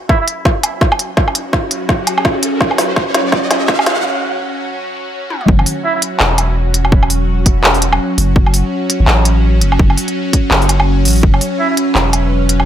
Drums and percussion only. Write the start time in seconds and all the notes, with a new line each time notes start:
0.09 kick, snare
0.28 closed hi-hat
0.45 kick, snare
0.63 closed hi-hat, low woodblock
0.81 kick, snare
0.92 low woodblock
0.99 closed hi-hat
1.17 kick, snare
1.28 low woodblock
1.35 closed hi-hat
1.53 kick, snare
1.71 closed hi-hat
1.89 kick, snare
2.07 closed hi-hat, low woodblock
2.18 low woodblock
2.25 kick, snare
2.43 closed hi-hat
2.61 kick, snare
2.71 low woodblock
2.78 snare, open hi-hat
2.96 kick, snare
3.14 snare, closed hi-hat
3.32 kick, snare
3.51 snare, closed hi-hat, low woodblock
3.68 kick, snare
3.79 low woodblock
3.86 snare, closed hi-hat
5.30 high tom
5.41 mid tom
5.48 kick
5.59 low woodblock
5.66 open hi-hat
6.02 closed hi-hat
6.20 clap
6.38 closed hi-hat, low woodblock
6.74 closed hi-hat
6.85 low woodblock
6.92 kick
7.03 low woodblock
7.10 open hi-hat
7.46 kick, closed hi-hat
7.64 clap
7.74 open hi-hat
7.82 closed hi-hat
7.93 low woodblock
8.18 open hi-hat
8.36 kick
8.46 low woodblock
8.54 open hi-hat
8.90 closed hi-hat
9.08 clap
9.25 closed hi-hat
9.61 closed hi-hat
9.72 low woodblock
9.79 kick
9.90 low woodblock
9.97 open hi-hat
10.08 closed hi-hat
10.33 kick, closed hi-hat
10.51 clap
10.62 open hi-hat
10.69 closed hi-hat, low woodblock
10.80 low woodblock
11.05 open hi-hat
11.08 open hi-hat
11.10 open hi-hat
11.13 open hi-hat
11.15 open hi-hat
11.17 open hi-hat
11.19 open hi-hat
11.21 kick, open hi-hat
11.34 low woodblock
11.41 open hi-hat
11.77 closed hi-hat
11.95 clap
12.13 closed hi-hat, low woodblock
12.49 closed hi-hat
12.60 low woodblock